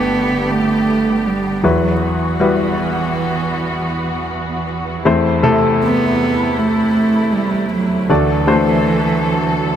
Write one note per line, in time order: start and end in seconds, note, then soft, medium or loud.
0.00 1.60 G1 medium
0.00 1.60 G2 soft
0.00 1.62 G2 medium
0.00 1.62 D3 medium
0.00 1.62 A3 soft
0.00 1.66 A3 medium
0.00 0.52 B3 medium
0.00 1.62 B3 soft
0.00 1.65 D4 medium
0.00 1.62 G4 medium
0.00 1.66 G4 medium
0.00 1.64 B4 medium
0.51 1.30 A3 medium
1.28 1.67 G3 medium
1.63 4.64 E2 soft
1.63 8.06 E2 medium
1.63 4.64 E3 soft
1.63 8.06 E3 soft
1.63 2.36 F#3 medium
1.63 2.03 F#3 medium
1.63 5.03 B3 soft
1.63 2.36 E4 medium
1.63 2.36 F#4 soft
1.63 5.03 F#4 medium
1.63 2.36 B4 medium
2.04 4.27 E3 medium
2.40 3.84 G3 medium
2.40 3.85 E4 soft
2.40 3.85 F#4 soft
2.40 3.85 B4 medium
5.05 8.06 E2 medium
5.05 8.07 C3 medium
5.05 8.06 E3 medium
5.05 5.42 A3 medium
5.05 9.76 A3 medium
5.05 5.42 C4 medium
5.05 5.42 E4 medium
5.05 8.07 E4 medium
5.05 5.42 C5 medium
5.43 6.88 C3 medium
5.43 6.88 A3 medium
5.43 6.88 E4 medium
5.43 6.88 A4 medium
5.84 6.60 B3 medium
6.59 7.36 A3 medium
7.35 7.72 G3 medium
7.73 8.13 F#3 medium
8.09 9.76 D2 medium
8.09 9.76 D2 soft
8.09 9.76 D3 soft
8.09 9.76 E3 medium
8.09 9.76 F#3 medium
8.09 8.46 A3 medium
8.09 8.46 D4 soft
8.09 8.46 F#4 soft
8.09 9.76 A4 medium
8.09 8.46 D5 medium
8.47 9.76 A3 medium
8.47 9.76 D4 medium
8.47 9.76 F#4 soft
8.47 9.76 C5 medium